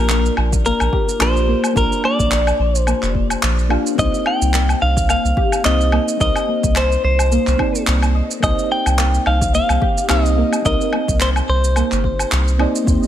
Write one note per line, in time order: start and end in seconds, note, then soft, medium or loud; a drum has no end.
0.00 0.30 A#1 medium
0.00 1.16 A#3 medium
0.00 1.17 D4 medium
0.00 1.17 F4 medium
0.00 1.18 G4 medium
0.00 0.34 A#4 loud
0.00 1.19 D5 loud
0.09 0.35 A#3 medium
0.09 clap medium
0.09 shaker medium
0.26 shaker soft
0.37 0.71 A#1 medium
0.37 0.63 F4 medium
0.37 low woodblock medium
0.53 kick loud
0.53 shaker medium
0.66 0.91 A#3 medium
0.66 1.22 A#4 medium
0.66 shaker soft
0.80 0.88 A#1 medium
0.80 low woodblock medium
0.80 shaker soft
0.93 1.20 G4 loud
0.93 kick loud
1.09 shaker medium
1.19 1.54 A#1 medium
1.19 1.72 A#3 medium
1.19 1.73 D4 medium
1.19 1.73 F4 medium
1.19 1.74 G4 medium
1.19 1.73 C5 medium
1.19 1.74 D5 medium
1.19 clap medium
1.19 low woodblock medium
1.19 shaker medium
1.37 shaker soft
1.48 1.74 A#3 loud
1.64 low woodblock medium
1.64 shaker medium
1.73 1.86 A#1 loud
1.73 3.11 A#3 medium
1.73 3.11 D4 medium
1.73 3.12 F4 medium
1.73 2.02 A#4 loud
1.73 kick loud
1.73 shaker medium
1.77 3.13 G4 medium
1.77 2.05 A#4 medium
1.77 3.13 D5 medium
1.92 shaker soft
2.04 2.29 A#3 medium
2.04 2.79 D5 loud
2.04 low woodblock medium
2.19 2.52 A#1 loud
2.19 kick loud
2.19 shaker medium
2.32 2.57 D5 medium
2.32 clap medium
2.32 shaker medium
2.47 low woodblock medium
2.47 shaker soft
2.59 2.93 A#1 loud
2.75 3.12 C5 loud
2.75 shaker medium
2.87 3.13 A#3 medium
2.87 low woodblock medium
2.87 shaker soft
3.03 3.35 F1 medium
3.03 clap soft
3.03 shaker soft
3.15 kick medium
3.30 low woodblock medium
3.30 shaker medium
3.43 3.77 A#1 medium
3.43 clap loud
3.43 shaker medium
3.59 shaker soft
3.69 3.94 A#3 medium
3.69 3.95 D4 medium
3.69 3.96 F4 loud
3.69 3.95 F4 medium
3.69 3.96 G4 medium
3.69 3.96 F5 medium
3.69 low woodblock medium
3.87 shaker medium
3.95 4.08 C2 loud
3.95 5.61 A#3 loud
3.95 5.61 C4 medium
3.95 5.62 D#4 medium
3.95 4.27 D#5 loud
3.95 kick loud
3.95 shaker medium
3.99 5.63 G4 medium
3.99 5.63 C5 loud
4.14 shaker soft
4.26 4.82 G5 loud
4.26 low woodblock medium
4.42 4.74 C2 loud
4.42 shaker medium
4.54 4.79 A#3 medium
4.54 clap loud
4.54 shaker medium
4.69 low woodblock medium
4.69 shaker soft
4.82 5.15 C2 medium
4.82 5.07 D#4 medium
4.82 5.09 F5 loud
4.97 kick loud
4.97 shaker medium
5.09 5.35 A#3 medium
5.09 5.62 F5 loud
5.09 low woodblock medium
5.09 shaker medium
5.25 5.32 C2 medium
5.25 shaker soft
5.37 5.64 G4 loud
5.37 kick loud
5.52 low woodblock medium
5.52 shaker medium
5.64 5.99 C2 loud
5.64 6.16 A#3 medium
5.64 6.17 C4 medium
5.64 6.17 D#4 medium
5.64 6.18 G4 medium
5.64 6.18 C5 medium
5.64 6.20 D#5 loud
5.64 clap loud
5.64 shaker medium
5.81 shaker soft
5.92 6.18 A#3 loud
5.92 low woodblock medium
6.08 shaker medium
6.17 6.30 C2 loud
6.17 7.55 A#3 medium
6.17 7.56 C4 medium
6.17 7.56 D#4 medium
6.17 6.46 A#4 loud
6.17 6.78 D#5 loud
6.17 kick loud
6.17 shaker medium
6.21 7.57 G4 medium
6.21 7.58 C5 medium
6.36 low woodblock medium
6.36 shaker soft
6.48 6.74 A#3 medium
6.63 6.96 C2 medium
6.63 kick loud
6.63 shaker medium
6.76 7.01 C5 medium
6.76 7.03 C5 medium
6.76 clap loud
6.76 low woodblock medium
6.76 shaker medium
6.92 shaker soft
7.04 7.38 C2 medium
7.04 7.84 C5 medium
7.19 low woodblock medium
7.19 shaker medium
7.32 7.57 A#3 medium
7.32 shaker medium
7.47 7.55 C2 medium
7.47 clap soft
7.47 shaker soft
7.56 8.38 A#3 medium
7.56 8.39 C4 medium
7.56 8.40 D#4 medium
7.56 kick medium
7.56 low woodblock medium
7.61 8.40 G4 medium
7.61 8.41 D5 medium
7.75 shaker medium
7.87 8.21 C2 loud
7.87 clap loud
7.87 shaker medium
8.02 low woodblock medium
8.02 shaker soft
8.15 8.31 D#5 medium
8.31 shaker medium
8.40 8.52 C2 loud
8.40 10.05 A#3 medium
8.40 10.06 C4 medium
8.40 10.06 D#4 medium
8.40 8.71 D#5 loud
8.40 kick loud
8.40 low woodblock medium
8.40 shaker medium
8.44 10.07 G4 medium
8.44 10.08 C5 loud
8.59 shaker soft
8.72 9.23 G5 loud
8.86 9.19 C2 medium
8.86 low woodblock medium
8.86 shaker medium
8.98 9.24 A#3 medium
8.98 clap loud
8.98 shaker medium
9.14 shaker soft
9.26 9.60 C2 medium
9.26 9.52 D#4 medium
9.26 9.52 F5 medium
9.26 low woodblock medium
9.41 kick loud
9.41 shaker medium
9.54 9.79 A#3 medium
9.54 10.06 F5 loud
9.54 shaker medium
9.69 9.77 C2 loud
9.69 low woodblock medium
9.69 shaker soft
9.82 10.08 G4 loud
9.82 kick loud
9.98 shaker medium
10.08 10.43 C2 medium
10.08 10.61 A#3 medium
10.08 10.62 C4 medium
10.08 10.62 D#4 medium
10.08 10.62 G4 medium
10.08 10.63 C5 medium
10.08 10.65 D#5 medium
10.08 clap loud
10.08 low woodblock medium
10.08 shaker medium
10.26 shaker soft
10.37 10.63 A#3 loud
10.53 low woodblock medium
10.53 shaker medium
10.62 10.75 C2 loud
10.62 12.00 A#3 medium
10.62 12.00 C4 medium
10.62 12.01 D#4 medium
10.62 10.91 A#4 loud
10.62 11.17 D#5 loud
10.62 kick loud
10.62 shaker medium
10.66 12.02 G4 medium
10.66 12.02 C5 medium
10.81 shaker soft
10.93 11.18 A#3 medium
10.93 low woodblock medium
11.08 11.41 C2 medium
11.08 kick loud
11.08 shaker medium
11.20 11.46 C5 medium
11.20 11.29 C5 medium
11.20 clap loud
11.20 shaker medium
11.36 low woodblock medium
11.36 shaker soft
11.49 11.82 C2 medium
11.49 12.28 C5 medium
11.64 shaker medium
11.76 12.02 A#3 medium
11.76 low woodblock medium
11.76 shaker medium
11.92 12.24 G1 medium
11.92 clap soft
11.92 shaker soft
12.04 kick medium
12.19 low woodblock medium
12.19 shaker medium
12.32 12.66 C2 loud
12.32 clap loud
12.32 shaker medium
12.48 shaker soft
12.58 12.83 A#3 medium
12.58 12.84 C4 medium
12.58 12.84 D#4 medium
12.58 12.85 G4 medium
12.58 12.85 D5 loud
12.58 12.76 D#5 medium
12.58 low woodblock medium
12.76 shaker medium
12.84 12.97 D#2 medium
12.84 13.07 A#3 medium
12.84 13.07 C4 medium
12.84 13.07 D#4 medium
12.84 kick loud
12.84 shaker medium
12.88 13.07 G4 medium
12.88 13.07 C5 loud
13.03 shaker soft